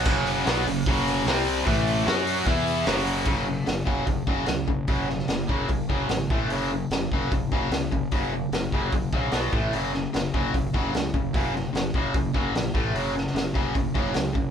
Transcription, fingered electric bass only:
0.06 0.43 F#1 medium
0.46 0.65 B1 medium
0.66 0.84 F#1 medium
0.87 1.24 F#1 medium
1.25 1.63 C2 medium
1.67 2.04 A1 medium
2.07 2.44 F#2 loud
2.46 2.84 E2 medium
2.87 3.27 F#1 medium
3.27 3.59 F#1 medium
3.67 3.83 F#1 medium
3.87 4.03 F#1 medium
4.08 4.24 F#1 medium
4.27 4.44 F#1 medium
4.48 4.64 C#2 medium
4.68 4.84 F#1 medium
4.89 5.21 F#1 medium
5.28 5.45 F#1 medium
5.49 5.65 F#1 medium
5.70 5.86 F#1 medium
5.89 6.06 F#1 medium
6.09 6.26 G#1 medium
6.31 6.49 A1 medium
6.49 6.82 F#1 medium
6.90 7.07 F#1 medium
7.12 7.28 F#1 medium
7.32 7.48 F#1 medium
7.52 7.68 F#1 medium
7.70 7.87 C#2 medium
7.93 8.08 F#1 medium
8.13 8.45 F#1 medium
8.52 8.68 F#1 medium
8.73 8.89 F#1 medium
8.93 9.09 F#1 medium
9.13 9.29 A#1 medium
9.32 9.49 B1 medium
9.53 9.69 A1 medium
9.73 10.06 F#1 medium
10.15 10.30 F#1 medium
10.34 10.50 F#1 medium
10.54 10.70 F#1 medium
10.74 10.90 F#1 medium
10.93 11.10 C#2 medium
11.14 11.30 F#1 medium
11.35 11.67 F#1 medium
11.73 11.90 F#1 medium
11.94 12.11 F#1 medium
12.14 12.31 F#1 medium
12.35 12.51 F#1 medium
12.52 12.69 A#1 medium
12.74 12.91 A1 medium
12.94 13.27 F#1 medium
13.34 13.51 F#1 medium
13.56 13.72 F#1 medium
13.75 13.91 F#1 medium
13.96 14.12 F#1 medium
14.16 14.32 C#2 medium
14.36 14.51 F#1 medium

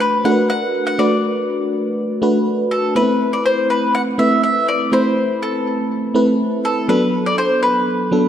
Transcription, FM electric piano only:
0.00 0.25 A3 medium
0.00 0.25 D4 medium
0.00 0.25 F#4 medium
0.00 0.32 B4 medium
0.25 0.86 A3 medium
0.25 0.86 D4 medium
0.25 0.86 F#4 medium
0.25 0.31 A#4 medium
0.32 0.89 B4 medium
0.99 1.80 A3 medium
0.99 1.80 D4 medium
0.99 1.80 F#4 medium
0.99 1.80 B4 medium
2.22 2.82 A3 medium
2.22 2.83 D4 medium
2.22 2.83 F#4 medium
2.22 2.83 B4 medium
2.95 3.76 A3 medium
2.95 3.02 B3 soft
2.95 3.77 E4 medium
2.95 3.77 B4 medium
3.02 3.80 C4 medium
4.18 4.79 A3 medium
4.18 4.79 C4 medium
4.18 4.79 E4 medium
4.18 4.80 B4 medium
4.92 5.73 A3 medium
4.92 5.73 C4 medium
4.92 5.73 E4 medium
4.92 5.74 B5 medium
6.14 6.76 A3 medium
6.14 6.76 C4 medium
6.14 6.76 E4 medium
6.14 6.76 B4 medium
6.88 7.70 F#3 medium
6.88 7.70 B3 medium
6.88 7.70 D4 medium
6.88 7.70 A4 medium
8.11 8.29 F#3 medium
8.11 8.29 B3 medium
8.11 8.29 D4 medium
8.11 8.29 A4 medium

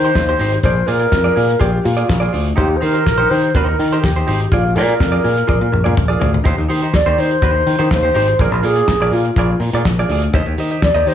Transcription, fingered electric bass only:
0.15 0.33 D#2 medium
0.39 0.57 G#1 medium
0.64 0.81 A#1 loud
0.88 1.05 A#2 medium
1.12 1.30 F2 medium
1.37 1.54 A#2 medium
1.61 1.78 A#1 medium
1.85 2.02 A#2 medium
2.10 2.27 A#1 loud
2.34 2.51 D2 medium
2.58 2.75 D#2 loud
2.82 2.99 D#3 medium
3.07 3.24 A#1 medium
3.31 3.48 D#3 medium
3.55 3.72 D#2 medium
3.79 3.96 D#3 loud
4.04 4.21 D#2 medium
4.28 4.45 G#1 medium
4.52 4.78 A#1 medium
4.76 4.93 A#2 medium
5.00 5.18 F2 medium
5.24 5.42 A#2 medium
5.49 5.58 A#1 loud
5.61 5.69 A#2 medium
5.72 5.82 A#1 medium
5.86 5.94 A#2 loud
5.98 6.15 A#1 medium
6.21 6.38 D2 medium
6.45 6.55 D#2 loud
6.58 6.66 D#2 medium
6.69 6.87 D#3 medium
6.94 7.03 D#2 medium
7.06 7.15 D#2 loud
7.18 7.36 D#3 medium
7.42 7.60 D#2 medium
7.67 7.76 D#3 loud
7.79 7.88 D#3 loud
7.91 8.08 D#2 medium
8.15 8.32 G#1 medium
8.39 8.49 A#1 medium
8.52 8.60 A#1 medium
8.63 8.81 A#2 medium
8.88 8.97 A#1 loud
9.00 9.09 A#1 loud
9.12 9.29 A#2 medium
9.36 9.54 A#1 medium
9.60 9.69 A#2 loud
9.73 9.82 A#2 loud
9.85 10.03 A#1 medium
10.09 10.27 D2 medium
10.34 10.43 D#2 loud
10.46 10.54 D#2 medium
10.58 10.75 D#3 medium
10.83 10.92 D#2 loud
10.94 11.03 D#2 loud
11.06 11.14 D#3 medium

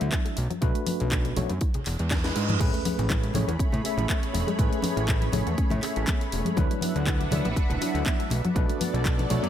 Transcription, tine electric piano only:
0.00 0.36 F#3 medium
0.00 0.36 D4 medium
0.00 0.36 E4 medium
0.00 0.36 E5 medium
0.61 1.33 A3 medium
0.61 1.34 D4 medium
0.61 1.34 F#4 medium
0.61 1.34 B4 loud
1.36 1.50 A3 medium
1.36 1.51 D4 medium
1.36 1.51 F#4 medium
1.36 1.51 C#5 medium
2.24 2.57 G#3 medium
2.24 2.58 D4 medium
2.24 2.58 E4 medium
2.24 2.58 B4 medium
2.59 3.31 A3 medium
2.59 3.32 C#4 medium
2.59 3.32 G#4 medium
2.59 3.33 B4 medium
3.34 3.49 A3 medium
3.34 3.49 C#4 medium
3.34 3.49 G#4 medium
3.34 3.49 C#5 medium
3.84 4.56 A3 medium
3.84 4.56 C#4 medium
3.84 4.56 G#4 medium
3.84 4.57 E5 medium
4.58 5.30 A3 medium
4.58 5.31 C#4 medium
4.58 5.31 G#4 medium
4.58 5.31 B4 loud
5.33 5.47 A3 medium
5.33 5.47 C#4 medium
5.33 5.48 G#4 medium
5.33 5.48 C#5 medium
5.82 6.54 A3 medium
5.82 6.54 C#4 medium
5.82 6.55 G#4 medium
5.82 6.55 E5 medium
6.56 7.28 F#3 medium
6.56 7.29 D4 medium
6.56 7.29 E4 medium
6.56 7.29 B4 loud
7.31 7.45 F#3 medium
7.31 7.46 D4 medium
7.31 7.46 E4 medium
7.31 7.46 D5 medium
7.81 8.29 F#3 medium
7.81 8.29 D4 medium
7.81 8.30 E4 medium
7.81 8.30 E5 medium
8.55 9.27 A3 medium
8.55 9.27 D4 medium
8.55 9.27 F#4 medium
8.55 9.28 B4 loud
9.30 9.44 A3 medium
9.30 9.44 D4 medium
9.30 9.44 F#4 medium
9.30 9.44 C#5 medium

